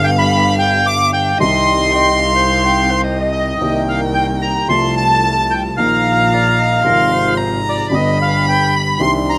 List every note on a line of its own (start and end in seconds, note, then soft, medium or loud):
0.00 1.28 G1 medium
0.00 1.29 G1 medium
0.00 1.29 G2 medium
0.00 1.28 D3 medium
0.00 1.29 G3 medium
0.00 1.28 B3 medium
0.00 1.29 B3 soft
0.00 1.29 D4 medium
0.00 1.29 G4 medium
0.00 1.30 G4 medium
0.00 1.40 F5 loud
0.04 0.10 G5 medium
0.19 0.56 B5 loud
0.59 0.86 G5 loud
0.86 1.11 D6 loud
1.13 1.38 G5 medium
1.38 3.49 C2 medium
1.38 3.50 C2 medium
1.38 3.50 C3 medium
1.38 3.49 D#3 medium
1.38 3.49 G3 soft
1.38 3.50 C4 medium
1.38 3.50 C4 soft
1.38 3.50 D#4 medium
1.38 3.50 G4 medium
1.38 1.94 D#5 medium
1.38 3.01 C6 loud
1.42 3.51 G4 medium
1.92 2.32 D#5 medium
1.92 2.21 G5 medium
2.20 3.05 F5 medium
2.36 2.66 C5 medium
2.65 2.92 G5 medium
2.91 3.19 C5 medium
3.03 3.59 D#5 medium
3.19 3.58 D#5 medium
3.33 3.84 D#5 medium
3.58 4.64 C2 medium
3.58 4.65 C2 medium
3.58 4.65 C3 medium
3.58 4.63 D#3 soft
3.58 4.64 A#3 soft
3.58 4.65 C4 medium
3.58 4.65 C4 soft
3.58 4.64 D#4 soft
3.58 4.65 A#4 medium
3.58 4.71 G5 medium
3.62 4.65 G4 soft
3.88 4.01 F5 medium
4.13 4.26 G5 medium
4.42 4.68 A#5 medium
4.68 5.73 C2 medium
4.68 5.73 C3 medium
4.68 5.73 F3 soft
4.68 5.74 A3 soft
4.68 5.73 C4 medium
4.68 5.73 F4 medium
4.68 5.74 F4 medium
4.68 5.73 A4 medium
4.68 5.79 A5 medium
4.68 4.95 C6 medium
4.97 5.53 A5 loud
5.50 5.63 G5 medium
5.76 6.80 A#1 medium
5.76 6.80 A#2 medium
5.76 6.79 D#3 soft
5.76 6.80 F3 soft
5.76 6.81 A#3 soft
5.76 6.80 D#4 medium
5.76 6.80 F4 medium
5.76 6.81 A#4 medium
5.76 7.34 F5 medium
5.76 6.84 A#5 medium
5.80 6.81 F4 medium
6.33 6.60 D5 medium
6.59 6.85 D#5 medium
6.82 7.87 G#1 medium
6.82 7.87 G#2 medium
6.82 7.86 C3 soft
6.82 7.87 F3 soft
6.82 7.88 G#3 soft
6.82 7.87 C4 medium
6.82 7.88 F4 soft
6.82 7.88 G#4 medium
6.82 7.14 A#4 medium
6.82 7.38 C6 medium
6.88 7.88 F4 medium
7.12 7.53 C5 medium
7.37 7.90 A#5 medium
7.69 7.95 D5 medium
7.90 8.94 G1 medium
7.90 8.94 G2 medium
7.90 8.93 D3 soft
7.90 8.93 G3 soft
7.90 8.94 B3 medium
7.90 8.94 B3 soft
7.90 8.94 D4 medium
7.90 8.94 G4 medium
7.90 9.01 B5 loud
7.94 8.95 G4 soft
7.94 8.18 D#5 medium
8.22 8.46 F5 medium
8.49 8.75 G5 medium
8.75 9.02 B5 medium
8.98 9.38 C2 medium
8.98 9.38 C3 medium
8.98 9.38 D#3 medium
8.98 9.38 C4 medium
8.98 9.38 C4 soft
8.98 9.38 D4 medium
8.98 9.38 D4 soft
8.98 9.38 G4 medium
8.98 9.38 C6 medium
9.02 9.14 C6 medium
9.30 9.38 A#5 medium